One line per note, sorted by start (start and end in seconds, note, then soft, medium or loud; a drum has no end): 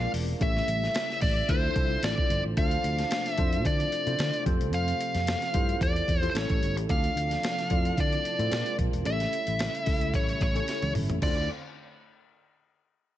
0.00 0.38 C3 medium
0.00 0.40 G#3 medium
0.00 0.40 A#3 medium
0.00 0.31 C4 medium
0.00 0.38 D4 medium
0.00 0.31 F4 medium
0.00 0.31 G#4 medium
0.00 0.31 A#4 medium
0.00 0.31 D5 medium
0.00 0.11 F5 medium
0.13 0.32 E1 loud
0.13 open hi-hat medium
0.40 0.60 A1 loud
0.40 1.48 C#3 medium
0.40 1.48 G3 medium
0.40 1.48 A3 medium
0.40 1.20 C#4 medium
0.40 1.20 E4 medium
0.40 1.20 G4 medium
0.40 1.21 A4 medium
0.40 1.21 C#5 medium
0.40 2.55 E5 medium
0.40 1.21 E5 loud
0.40 kick loud
0.40 closed hi-hat medium
0.57 snare soft
0.67 0.86 A1 loud
0.67 closed hi-hat medium
0.84 snare soft
0.95 snare loud
0.95 closed hi-hat loud
1.10 snare soft
1.21 1.41 A1 medium
1.21 1.50 D5 medium
1.21 kick loud
1.21 open hi-hat medium
1.49 1.68 D2 loud
1.49 2.56 D3 medium
1.49 2.56 F3 medium
1.49 2.56 C4 medium
1.49 1.71 D4 medium
1.49 1.71 E4 medium
1.49 1.71 F4 medium
1.49 1.71 A4 medium
1.49 2.05 C5 medium
1.49 1.71 C5 medium
1.49 kick medium
1.49 closed hi-hat medium
1.75 1.95 C2 medium
1.75 2.36 D4 medium
1.75 2.36 E4 medium
1.75 2.36 F4 medium
1.75 2.36 A4 medium
1.75 2.36 C5 medium
1.75 kick loud
1.75 closed hi-hat medium
2.03 2.13 A1 medium
2.03 2.42 D5 medium
2.03 snare loud
2.03 closed hi-hat loud
2.18 kick medium
2.30 2.40 G1 loud
2.30 closed hi-hat medium
2.44 2.53 A1 medium
2.57 2.76 D2 loud
2.57 6.32 C3 medium
2.57 6.32 F3 medium
2.57 8.48 A3 medium
2.57 3.17 C4 medium
2.57 3.17 D4 medium
2.57 4.45 D4 medium
2.57 3.17 F4 medium
2.57 3.17 A4 medium
2.57 3.17 C5 medium
2.57 3.32 F5 loud
2.57 kick loud
2.57 closed hi-hat medium
2.71 closed hi-hat soft
2.84 3.03 D2 medium
2.84 closed hi-hat medium
2.99 snare soft
2.99 closed hi-hat medium
3.11 snare loud
3.11 closed hi-hat loud
3.26 snare soft
3.26 closed hi-hat medium
3.32 3.66 E5 loud
3.38 3.65 F2 medium
3.38 3.88 D4 medium
3.38 3.88 E4 medium
3.38 3.88 F4 medium
3.38 3.88 A4 medium
3.38 3.89 C5 medium
3.38 kick loud
3.38 closed hi-hat medium
3.53 closed hi-hat medium
3.65 3.84 D3 loud
3.65 4.43 D5 medium
3.65 kick medium
3.65 closed hi-hat medium
3.80 closed hi-hat soft
3.92 closed hi-hat medium
4.06 4.15 C3 medium
4.06 4.46 D4 medium
4.06 4.46 E4 medium
4.06 4.45 F4 medium
4.06 4.45 A4 medium
4.06 4.45 C5 medium
4.06 closed hi-hat medium
4.19 4.29 D3 loud
4.19 snare loud
4.19 closed hi-hat loud
4.33 closed hi-hat soft
4.45 4.56 F2 loud
4.45 5.33 C4 medium
4.45 5.33 F4 medium
4.45 5.33 G4 medium
4.45 5.33 A4 medium
4.45 5.33 C5 loud
4.45 kick loud
4.45 closed hi-hat medium
4.60 4.73 C2 loud
4.60 closed hi-hat medium
4.73 4.92 F2 loud
4.73 5.82 F5 loud
4.73 closed hi-hat medium
4.88 closed hi-hat medium
5.01 closed hi-hat medium
5.14 5.33 F2 medium
5.14 snare soft
5.14 closed hi-hat soft
5.27 snare loud
5.27 closed hi-hat medium
5.42 snare soft
5.42 closed hi-hat medium
5.53 5.73 G2 medium
5.53 6.04 E4 medium
5.53 6.04 F4 medium
5.53 6.04 G4 medium
5.53 6.04 A4 medium
5.53 6.04 C5 medium
5.53 kick loud
5.53 closed hi-hat medium
5.69 closed hi-hat medium
5.81 6.00 E2 medium
5.81 6.31 D5 loud
5.81 kick medium
5.81 closed hi-hat medium
5.96 closed hi-hat soft
6.08 6.27 E2 medium
6.08 kick medium
6.08 closed hi-hat medium
6.22 6.33 E4 medium
6.22 6.35 F4 medium
6.22 6.33 G4 medium
6.22 6.34 A4 medium
6.22 6.35 C5 medium
6.22 closed hi-hat medium
6.30 6.36 C5 medium
6.34 6.45 A1 loud
6.34 6.89 C#3 medium
6.34 6.89 G3 medium
6.34 6.79 C#4 medium
6.34 6.79 E4 medium
6.34 6.79 G4 medium
6.34 6.79 A4 medium
6.34 6.79 C#5 medium
6.34 6.75 C#5 medium
6.34 snare loud
6.34 closed hi-hat loud
6.50 6.58 A1 medium
6.50 kick medium
6.50 closed hi-hat medium
6.62 6.76 G1 medium
6.62 closed hi-hat medium
6.76 6.85 A1 loud
6.76 closed hi-hat medium
6.88 7.08 D2 loud
6.88 9.03 C3 medium
6.88 8.50 F3 medium
6.88 7.49 C4 medium
6.88 7.49 D4 medium
6.88 9.03 D4 medium
6.88 7.49 F4 medium
6.88 7.49 A4 medium
6.88 7.50 D5 medium
6.88 8.01 F5 loud
6.88 kick loud
6.88 closed hi-hat medium
7.04 closed hi-hat soft
7.16 7.35 D2 medium
7.16 closed hi-hat medium
7.31 snare soft
7.31 closed hi-hat medium
7.43 snare loud
7.43 closed hi-hat medium
7.59 snare soft
7.59 closed hi-hat soft
7.70 7.89 F2 medium
7.70 8.20 C4 medium
7.70 8.20 E4 medium
7.70 8.20 F4 medium
7.70 8.21 A4 medium
7.70 8.21 D5 medium
7.70 kick loud
7.70 closed hi-hat medium
7.85 closed hi-hat medium
7.97 8.16 D3 medium
7.97 8.76 D5 medium
7.97 kick medium
7.97 closed hi-hat medium
8.13 closed hi-hat soft
8.25 closed hi-hat medium
8.39 8.48 A2 medium
8.39 8.50 C4 medium
8.39 8.51 E4 medium
8.39 8.50 F4 medium
8.39 8.52 A4 medium
8.39 8.52 C5 medium
8.39 closed hi-hat medium
8.51 8.62 A#2 loud
8.51 9.05 G#3 medium
8.51 9.05 A#3 medium
8.51 8.95 C4 medium
8.51 8.96 F4 medium
8.51 8.96 G#4 medium
8.51 8.96 A#4 medium
8.51 8.96 D5 medium
8.51 snare loud
8.51 closed hi-hat loud
8.66 closed hi-hat soft
8.78 8.89 A#1 medium
8.78 kick medium
8.78 closed hi-hat medium
8.93 9.02 E1 medium
8.93 closed hi-hat medium
9.05 9.24 A1 loud
9.05 11.20 C#3 medium
9.05 11.20 G3 medium
9.05 11.20 A3 medium
9.05 9.65 C#4 medium
9.05 9.66 E4 medium
9.05 11.20 E4 medium
9.05 9.66 G4 medium
9.05 9.66 A4 medium
9.05 9.66 C#5 medium
9.05 10.15 E5 loud
9.05 closed hi-hat medium
9.20 snare soft
9.20 closed hi-hat soft
9.33 closed hi-hat medium
9.47 9.66 A1 medium
9.47 closed hi-hat soft
9.59 snare loud
9.59 closed hi-hat loud
9.75 closed hi-hat medium
9.86 10.14 C#2 medium
9.86 10.37 C#4 medium
9.86 10.37 E4 medium
9.86 10.37 G4 medium
9.86 10.37 A4 medium
9.86 10.37 E5 medium
9.86 kick medium
9.86 open hi-hat medium
10.01 closed hi-hat medium
10.14 10.33 A1 medium
10.14 10.42 C#5 medium
10.14 kick medium
10.14 closed hi-hat medium
10.29 closed hi-hat soft
10.41 10.59 A1 medium
10.41 10.92 C#5 medium
10.41 kick medium
10.41 closed hi-hat medium
10.55 11.04 C#4 medium
10.55 11.05 E4 medium
10.55 11.05 G4 medium
10.55 11.05 A4 medium
10.55 11.05 C#5 medium
10.55 closed hi-hat medium
10.68 snare medium
10.68 closed hi-hat medium
10.82 10.91 C#2 medium
10.82 closed hi-hat soft
10.82 high tom medium
10.95 11.05 G1 medium
10.95 mid tom medium
10.95 open hi-hat medium
11.10 11.18 A1 medium
11.10 closed hi-hat medium
11.10 floor tom medium
11.21 11.47 D2 medium
11.21 11.47 D3 medium
11.21 11.47 A3 medium
11.21 11.47 C4 medium
11.21 11.47 D4 medium
11.21 11.47 E4 medium
11.21 11.47 F4 medium
11.21 11.47 A4 medium
11.21 11.47 C5 medium
11.21 11.48 D5 medium
11.21 kick loud
11.21 crash medium